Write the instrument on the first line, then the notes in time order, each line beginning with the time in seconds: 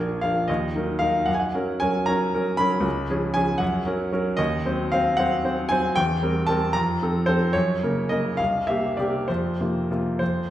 grand piano
Already playing: A#1 G#5
0.00 F3 D4 A#4
0.21 F3 D4 A#4 F5
0.48 D#2 D#5
0.75 F#3 D#4 A#4
0.99 F#3 D#4 A#4 F5
1.26 F#2 F#5
1.34 G#5
1.40 F#5
1.55 F#3 C#4 A#4
1.80 F#3 C#4 A#4 G#5
2.06 F#3 C#4 A#4 A#5
2.34 F#3 C#4 A#4
2.57 F#3 C#4 A#4 B5
2.80 C#2
3.10 F3 C#4 G#4
3.34 F3 C#4 G#4 G#5
3.58 F#2 F#5
3.86 F#3 C#4 A#4
4.12 F#3 C#4 A#4
4.37 D#2 D#5
4.65 F#3 C4 C5
4.92 F#3 C4 C5 F5
5.17 F#3 C4 C5 F#5
5.44 F#3 C4 C5
5.69 F#3 C4 C5 G#5
5.96 E2 G5
6.22 G3 C4 A#4
6.47 G3 C4 A#4 A5
6.73 F2 A#5
7.02 F3 C4 A4
7.26 F3 C4 A4 C5
7.53 F#2 C#5
7.84 C#3 A#3 A#4
8.09 C#3 A#3 A#4 D#5
8.37 C2 F5
8.67 C3 A#3 G4 E5
8.97 C3 A#3 G4 D5
9.28 F2 C5
9.61 C3 A#3 F4
9.91 C3 A#3 F4
10.19 F2 C5